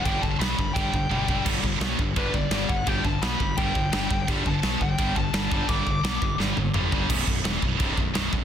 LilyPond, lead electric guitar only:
\new Staff \with { instrumentName = "Lead electric guitar" } { \time 4/4 \key g \lydian \tempo 4 = 170 g''8 a''8 b''4 g''2 | r2 b'8 d''4 fis''8 | g''8 a''8 b''4 g''2 | r8 a''4 g''4 a''4. |
d'''2 r2 | r1 | }